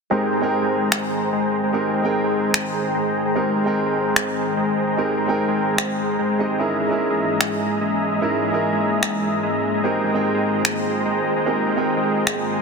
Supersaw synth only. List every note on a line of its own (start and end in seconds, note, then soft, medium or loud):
0.11 0.29 G#3 medium
0.11 0.29 G#4 medium
0.11 0.29 C5 medium
0.11 0.29 G5 medium
0.11 0.29 A#5 medium
0.31 0.59 G#3 medium
0.31 0.59 G#4 medium
0.31 0.59 C5 medium
0.31 0.59 G5 medium
0.31 0.59 A#5 medium
0.62 0.90 G#3 medium
0.62 0.90 G#4 medium
0.62 0.90 C5 medium
0.62 0.90 G5 medium
0.62 0.90 A#5 medium
0.92 1.30 G#3 medium
0.92 1.30 G#4 medium
0.92 1.30 C5 medium
0.92 1.30 G5 medium
0.92 1.30 A#5 medium
1.33 1.61 G#3 medium
1.33 1.61 G#4 medium
1.33 1.61 C5 medium
1.33 1.61 G5 medium
1.33 1.61 A#5 loud
1.63 1.72 G#3 medium
1.63 1.72 G#4 medium
1.63 1.72 C5 medium
1.63 1.72 G5 medium
1.63 1.72 A#5 medium
1.73 1.91 G#3 medium
1.73 1.91 G#4 medium
1.73 1.91 C5 medium
1.73 1.91 G5 medium
1.73 1.91 A#5 medium
1.93 2.22 G#3 medium
1.93 2.22 G#4 medium
1.93 2.22 C5 medium
1.93 2.22 G5 medium
1.93 2.22 A#5 medium
2.24 2.52 G#3 medium
2.24 2.52 G#4 medium
2.24 2.52 C5 medium
2.24 2.52 G5 medium
2.24 2.52 A#5 medium
2.54 2.92 G#3 medium
2.54 2.92 G#4 medium
2.54 2.92 C5 medium
2.54 2.92 G5 medium
2.54 2.92 A#5 medium
2.95 3.23 G#3 medium
2.95 3.23 G#4 medium
2.95 3.23 C5 medium
2.95 3.23 G5 medium
2.95 3.23 A#5 loud
3.25 3.34 G#3 medium
3.25 3.34 G#4 medium
3.25 3.34 C5 medium
3.25 3.34 G5 medium
3.25 3.34 A#5 medium
3.35 3.53 G#3 medium
3.35 3.53 G#4 medium
3.35 3.53 C5 medium
3.35 3.53 G5 medium
3.35 3.53 A#5 medium
3.56 3.84 G#3 medium
3.56 3.84 G#4 medium
3.56 3.84 C5 medium
3.56 3.84 G5 medium
3.56 3.84 A#5 medium
3.86 4.14 G#3 medium
3.86 4.14 G#4 medium
3.86 4.14 C5 medium
3.86 4.14 G5 medium
3.86 4.14 A#5 medium
4.16 4.54 G#3 medium
4.16 4.54 G#4 medium
4.16 4.54 C5 medium
4.16 4.54 G5 medium
4.16 4.54 A#5 medium
4.57 4.85 G#3 medium
4.57 4.85 G#4 medium
4.57 4.85 C5 medium
4.57 4.85 G5 medium
4.57 4.85 A#5 loud
4.87 4.96 G#3 medium
4.87 4.96 G#4 medium
4.87 4.96 C5 medium
4.87 4.96 G5 medium
4.87 4.96 A#5 medium
4.97 5.15 G#3 medium
4.97 5.15 G#4 medium
4.97 5.15 C5 medium
4.97 5.15 G5 medium
4.97 5.15 A#5 medium
5.17 5.46 G#3 medium
5.17 5.46 G#4 medium
5.17 5.46 C5 medium
5.17 5.46 G5 medium
5.17 5.46 A#5 medium
5.48 5.76 G#3 medium
5.48 5.76 G#4 medium
5.48 5.76 C5 medium
5.48 5.76 G5 medium
5.48 5.76 A#5 medium
5.78 6.17 G#3 medium
5.78 6.17 G#4 medium
5.78 6.17 C5 medium
5.78 6.17 G5 medium
5.78 6.17 A#5 medium
6.19 6.47 G#3 medium
6.19 6.47 G#4 medium
6.19 6.47 C5 medium
6.19 6.47 G5 medium
6.19 6.47 A#5 loud
6.49 6.58 G#3 medium
6.49 6.58 G#4 medium
6.49 6.58 C5 medium
6.49 6.58 G5 medium
6.49 6.58 A#5 medium
6.59 6.77 G#3 medium
6.59 6.77 G#4 medium
6.59 6.77 D#5 medium
6.59 6.77 E5 medium
6.59 6.77 A#5 medium
6.80 7.08 G#3 medium
6.80 7.08 G#4 medium
6.80 7.08 D#5 medium
6.80 7.08 E5 medium
6.80 7.08 A#5 medium
7.10 7.38 G#3 medium
7.10 7.38 G#4 medium
7.10 7.38 D#5 medium
7.10 7.38 E5 medium
7.10 7.38 A#5 medium
7.41 7.79 G#3 medium
7.41 7.79 G#4 medium
7.41 7.79 D#5 medium
7.41 7.79 E5 medium
7.41 7.79 A#5 medium
7.81 8.09 G#3 medium
7.81 8.09 G#4 medium
7.81 8.09 D#5 medium
7.81 8.09 E5 medium
7.81 8.09 A#5 loud
8.12 8.20 G#3 medium
8.12 8.20 G#4 medium
8.12 8.20 D#5 medium
8.12 8.20 E5 medium
8.12 8.20 A#5 medium
8.22 8.40 G#3 medium
8.22 8.40 G#4 medium
8.22 8.40 D#5 medium
8.22 8.40 E5 medium
8.22 8.40 A#5 medium
8.42 8.70 G#3 medium
8.42 8.70 G#4 medium
8.42 8.70 D#5 medium
8.42 8.70 E5 medium
8.42 8.70 A#5 medium
8.73 9.00 G#3 medium
8.73 9.01 G#4 medium
8.73 9.00 D#5 medium
8.73 9.01 E5 medium
8.73 9.01 A#5 medium
9.03 9.41 G#3 medium
9.03 9.41 G#4 medium
9.03 9.41 D#5 medium
9.03 9.41 E5 medium
9.03 9.41 A#5 medium
9.43 9.71 G#3 medium
9.43 9.71 G#4 medium
9.43 9.71 D#5 medium
9.43 9.71 E5 medium
9.43 9.71 A#5 loud
9.74 9.82 G#3 medium
9.74 9.82 G#4 medium
9.74 9.82 D#5 medium
9.74 9.82 E5 medium
9.74 9.82 A#5 medium
9.84 10.02 G#3 medium
9.84 10.02 G#4 medium
9.84 10.02 C5 medium
9.84 10.02 D#5 medium
9.84 10.02 G5 medium
9.84 10.02 A#5 medium
10.04 10.32 G#3 medium
10.04 10.32 G#4 medium
10.04 10.32 C5 medium
10.04 10.32 D#5 medium
10.04 10.32 G5 medium
10.04 10.32 A#5 medium
10.35 10.63 G#3 medium
10.35 10.63 G#4 medium
10.35 10.63 C5 medium
10.35 10.63 D#5 medium
10.35 10.63 G5 medium
10.35 10.63 A#5 medium
10.65 11.03 G#3 medium
10.65 11.03 G#4 medium
10.65 11.03 C5 medium
10.65 11.03 D#5 medium
10.65 11.03 G5 medium
10.65 11.03 A#5 medium
11.05 11.34 G#3 medium
11.05 11.34 G#4 medium
11.05 11.34 C5 medium
11.05 11.34 D#5 medium
11.05 11.34 G5 medium
11.05 11.34 A#5 loud
11.36 11.45 G#3 medium
11.36 11.45 G#4 medium
11.36 11.45 C5 medium
11.36 11.45 D#5 medium
11.36 11.45 G5 medium
11.36 11.45 A#5 medium
11.46 11.64 G#3 medium
11.46 11.64 G#4 medium
11.46 11.64 C5 medium
11.46 11.64 D#5 medium
11.46 11.64 G5 medium
11.46 11.64 A#5 medium
11.66 11.95 G#3 medium
11.66 11.95 G#4 medium
11.66 11.95 C5 medium
11.66 11.95 D#5 medium
11.66 11.95 G5 medium
11.66 11.95 A#5 medium
11.97 12.25 G#3 medium
11.97 12.25 G#4 medium
11.97 12.25 C5 medium
11.97 12.25 D#5 medium
11.97 12.25 G5 medium
11.97 12.25 A#5 medium
12.27 12.62 G#3 medium
12.27 12.62 G#4 medium
12.27 12.62 C5 medium
12.27 12.62 D#5 medium
12.27 12.62 G5 medium
12.27 12.62 A#5 medium